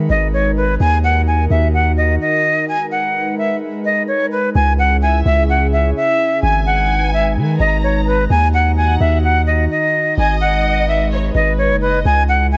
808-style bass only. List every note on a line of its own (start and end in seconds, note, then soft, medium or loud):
0.10 0.77 G#1 loud
0.80 1.48 D#2 loud
1.51 2.18 D#2 loud
4.55 5.23 C#2 loud
5.26 5.93 C#2 loud
6.43 7.38 G#1 loud
7.37 7.59 D#3 loud
7.60 8.27 G#1 loud
8.30 8.98 D#2 loud
9.01 9.68 D#2 loud
10.18 11.31 G#1 loud
11.35 11.72 G#1 loud
11.70 12.04 F#1 loud
12.05 12.57 C#2 loud